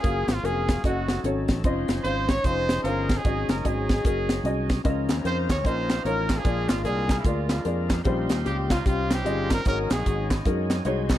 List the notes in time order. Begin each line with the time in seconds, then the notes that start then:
Already playing: C#4 F4 G#4
0.03 F#1 F#3 A#3 F4 F#4 G#4 F5, kick, closed hi-hat
0.28 G#1 F4, snare, closed hi-hat
0.43 F1 A#3 C#4 F4 F#4 G#4 A#4, closed hi-hat
0.69 kick, snare, closed hi-hat
0.84 F#1 F#3 A3 C#4 D#4 F#4 G#4 A4 D#5, kick, closed hi-hat
0.89 A4
1.08 snare, closed hi-hat
1.24 G#1 C#4 F#4 A4 C#5, closed hi-hat
1.48 A1, kick, snare, closed hi-hat
1.64 F1 F3 C#4 D#4 F4 C5 D#5, kick, closed hi-hat
1.88 F#1, snare, closed hi-hat
2.03 G#1 C#4 F4 C5 F5, closed hi-hat
2.29 C#5, kick, snare, closed hi-hat
2.44 F1 C#4 D#4 F4 G#4 C5 F5, kick, closed hi-hat
2.69 snare, closed hi-hat
2.83 G1 C#4 D#4 F4 A#4 C5 F5, closed hi-hat
3.09 kick, snare, closed hi-hat
3.17 C#4 D#4 G#4
3.24 G#1 G#2 F#3 C#4 D#4 F#4 G#4 D#5, kick, closed hi-hat
3.48 F#1 A#4, snare, closed hi-hat
3.53 A#4
3.60 A#4
3.64 G#1 C#4 F#4 G#4 D#5, kick, closed hi-hat
3.89 C#4 D#4 G#4, kick, snare, closed hi-hat
4.04 F#1 C#4 F#4 G#4 A#4, kick, closed hi-hat
4.29 snare, closed hi-hat
4.44 C2 C#4 F#4 G#4 D#5, closed hi-hat
4.69 kick, snare, closed hi-hat
4.84 C#2 C#3 F3 C#4 D#4 F4 A4 A#4 D#5, kick, closed hi-hat
4.90 A#4
5.09 D#2, snare, clap, closed hi-hat
5.24 F2 C#4 F4 A#4 C5, closed hi-hat
5.49 D#2 C#5, kick, snare, clap, closed hi-hat
5.65 A#1 C#4 D#4 F4 A#4 C5 D#5, kick, closed hi-hat
5.90 snare, clap, closed hi-hat
6.05 A1 C#4 D#4 F4 A#4 C#5, closed hi-hat
6.29 kick, snare, clap, closed hi-hat
6.38 D4 F4 G#4
6.44 A#1 A#2 G#3 A#3 D4 F4 G#4 A#4 D5, kick, closed hi-hat
6.69 G#1 F4, snare, clap, closed hi-hat
6.84 C2 A#3 D4 F4 G#4 D5, closed hi-hat
7.09 kick, snare, clap, closed hi-hat
7.20 E4
7.24 D2 G#3 A#3 D4 F4 G#4 D5, kick, closed hi-hat
7.49 snare, clap, closed hi-hat
7.65 F2 A#3 F4 G#4 D5, closed hi-hat
7.90 kick, snare, clap, closed hi-hat
8.04 A#1 A#2 G3 C#4 D#4 F4 C5, kick, closed hi-hat
8.29 D#2, snare, clap, closed hi-hat
8.45 C#2 G3 C#4 F4 G4, closed hi-hat
8.70 F4, kick, snare, clap, closed hi-hat
8.86 C2 G3 C4 C#4 F4 G4, kick, closed hi-hat
9.11 G4, snare, clap, closed hi-hat
9.25 G1 G3 C#4 F4 G#4 D#5, closed hi-hat
9.50 A#4, kick, snare, clap, closed hi-hat
9.65 G#1 G#2 F#3 G#3 C#4 D#4 F#4 G#4 A#4 C#5, kick, closed hi-hat
9.90 A#1 C#4 D#4 G#4, snare, clap, closed hi-hat
10.06 G#1 G#3 D#4 F#4 G#4, kick, closed hi-hat
10.30 kick, snare, clap, closed hi-hat
10.45 F#2 G#3 D#4 F#4 A#4, kick, closed hi-hat
10.70 snare, clap, closed hi-hat
10.85 C2 G#3 D#4 F#4 C5 C#5 G#5, closed hi-hat
11.09 F#4 D#5, kick, snare, clap, closed hi-hat